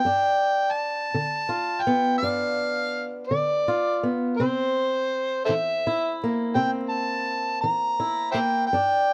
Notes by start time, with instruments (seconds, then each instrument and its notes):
Already playing: harmonica G5
0.05 steel-string acoustic guitar G2 D4
0.72 harmonica A5
1.14 steel-string acoustic guitar D3
1.49 steel-string acoustic guitar F4
1.82 harmonica G5
1.87 steel-string acoustic guitar B3
2.18 harmonica F5
2.23 steel-string acoustic guitar G2 D4
3.27 steel-string acoustic guitar D3, harmonica D5
3.68 steel-string acoustic guitar F4
4.03 steel-string acoustic guitar B3
4.37 steel-string acoustic guitar C3 C4, harmonica C5
5.45 steel-string acoustic guitar E3, harmonica A4 C5 E5
5.87 steel-string acoustic guitar E4
6.24 steel-string acoustic guitar A#3
6.55 steel-string acoustic guitar C3 C4, harmonica G5
6.89 harmonica A5
7.61 steel-string acoustic guitar E3, harmonica A#5
8.00 steel-string acoustic guitar E4
8.32 steel-string acoustic guitar A#3, harmonica C5 E5 G5
8.67 harmonica G5
8.73 steel-string acoustic guitar G2 D4